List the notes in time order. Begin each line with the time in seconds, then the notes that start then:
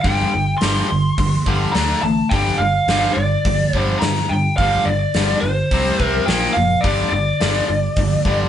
0.02 G1 G2 D3 G3 G5, kick, open hi-hat
0.34 G1 G2 D3
0.58 G2 C6, snare, open hi-hat
0.62 G1 D3 G3
0.89 G1 G2 D3
1.18 G1 G2 D3, kick, open hi-hat
1.46 G1 G2 D3 G3, kick
1.72 D2 D3 A3 D4 A#5, snare, open hi-hat
2.02 A1 D3 A3 A5
2.29 G1 G2 D3 G5, kick, open hi-hat
2.34 G3
2.58 G1 G2 D3 F5
2.87 G1 G2 D3 G3, snare, open hi-hat
3.13 G1 D5
3.17 G2 D3
3.45 G1 G2 D3, kick, open hi-hat
3.73 G1 G2 D3 G3, kick
3.78 C5
3.99 G2 A#5, snare, open hi-hat
4.04 G2 D3
4.29 G2 G5
4.33 D3
4.57 G1 G2 D3 F5, kick, open hi-hat
4.62 G3
4.85 G1 D5
4.89 G2 D3
5.14 G1 G2 D3 G3, snare, open hi-hat
5.41 G1 C5
5.45 G2 D3
5.71 C2 C3 G3 C4, kick, open hi-hat
6.00 C2 C3 G3 C4, kick
6.05 A#4
6.26 A#1 A#2 F3 A#3 G5, snare, open hi-hat
6.53 F#1 A#2 F3 F5
6.81 G1 G2 D3 G3 D5, kick, open hi-hat
7.10 G1 G2 D3 D5
7.40 G1 G2 D3 G3, snare, open hi-hat
7.70 G1 G2 D3
7.96 G1 G2 D3, kick, open hi-hat
8.25 G1 G2 D3 G3, kick